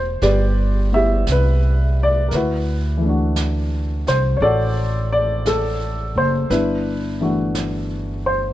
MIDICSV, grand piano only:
0, 0, Header, 1, 2, 480
1, 0, Start_track
1, 0, Tempo, 1047120
1, 1062, Time_signature, 4, 2, 24, 8
1, 3911, End_track
2, 0, Start_track
2, 0, Title_t, "Grand piano"
2, 0, Program_c, 0, 0
2, 0, Control_c, 0, 64, 127
2, 0, Note_on_c, 0, 52, 43
2, 0, Note_on_c, 0, 57, 39
2, 0, Note_on_c, 0, 62, 39
2, 0, Note_on_c, 0, 67, 54
2, 0, Note_on_c, 0, 71, 70
2, 0, Note_on_c, 0, 72, 70
2, 85, Note_off_c, 0, 67, 0
2, 93, Note_off_c, 0, 72, 0
2, 103, Note_off_c, 0, 71, 0
2, 103, Note_on_c, 0, 67, 57
2, 103, Note_on_c, 0, 71, 61
2, 104, Note_on_c, 0, 74, 77
2, 408, Note_off_c, 0, 74, 0
2, 424, Note_on_c, 0, 59, 38
2, 431, Note_off_c, 0, 67, 0
2, 431, Note_on_c, 0, 76, 81
2, 432, Note_on_c, 0, 64, 34
2, 438, Note_on_c, 0, 67, 43
2, 589, Note_off_c, 0, 76, 0
2, 598, Note_off_c, 0, 71, 0
2, 605, Note_on_c, 0, 71, 78
2, 927, Note_off_c, 0, 71, 0
2, 932, Note_on_c, 0, 74, 84
2, 1046, Note_off_c, 0, 74, 0
2, 1047, Note_on_c, 0, 70, 50
2, 1058, Note_off_c, 0, 52, 0
2, 1062, Note_off_c, 0, 59, 0
2, 1063, Note_off_c, 0, 57, 0
2, 1065, Note_off_c, 0, 62, 0
2, 1065, Note_off_c, 0, 70, 0
2, 1066, Note_off_c, 0, 64, 0
2, 1069, Note_off_c, 0, 67, 0
2, 1069, Control_c, 0, 64, 0
2, 1075, Note_on_c, 0, 66, 50
2, 1076, Note_on_c, 0, 71, 67
2, 1080, Note_on_c, 0, 64, 48
2, 1140, Control_c, 0, 64, 127
2, 1363, Note_on_c, 0, 52, 46
2, 1381, Note_on_c, 0, 57, 43
2, 1399, Note_on_c, 0, 62, 46
2, 1409, Note_off_c, 0, 66, 0
2, 1416, Note_on_c, 0, 66, 54
2, 1532, Note_off_c, 0, 71, 0
2, 1871, Note_on_c, 0, 72, 77
2, 2002, Note_on_c, 0, 73, 64
2, 2009, Note_off_c, 0, 72, 0
2, 2015, Note_off_c, 0, 64, 0
2, 2023, Note_off_c, 0, 73, 0
2, 2024, Note_off_c, 0, 66, 0
2, 2026, Note_on_c, 0, 74, 92
2, 2028, Note_on_c, 0, 69, 68
2, 2031, Note_on_c, 0, 66, 65
2, 2330, Note_off_c, 0, 74, 0
2, 2349, Note_on_c, 0, 74, 84
2, 2501, Note_off_c, 0, 69, 0
2, 2508, Note_off_c, 0, 74, 0
2, 2508, Note_on_c, 0, 69, 80
2, 2831, Note_on_c, 0, 72, 82
2, 2838, Note_off_c, 0, 69, 0
2, 2966, Note_off_c, 0, 66, 0
2, 2969, Note_off_c, 0, 52, 0
2, 2976, Note_off_c, 0, 62, 0
2, 2978, Note_off_c, 0, 57, 0
2, 2981, Note_on_c, 0, 71, 73
2, 2983, Note_on_c, 0, 62, 55
2, 2986, Note_on_c, 0, 64, 55
2, 2988, Note_off_c, 0, 72, 0
2, 2988, Control_c, 0, 64, 0
2, 3081, Control_c, 0, 64, 127
2, 3300, Note_off_c, 0, 62, 0
2, 3304, Note_on_c, 0, 52, 49
2, 3306, Note_on_c, 0, 57, 41
2, 3307, Note_on_c, 0, 62, 42
2, 3312, Note_on_c, 0, 66, 52
2, 3441, Note_off_c, 0, 71, 0
2, 3788, Note_on_c, 0, 72, 77
2, 3911, Note_off_c, 0, 52, 0
2, 3911, Note_off_c, 0, 57, 0
2, 3911, Note_off_c, 0, 62, 0
2, 3911, Note_off_c, 0, 64, 0
2, 3911, Note_off_c, 0, 66, 0
2, 3911, Note_off_c, 0, 72, 0
2, 3911, End_track
0, 0, End_of_file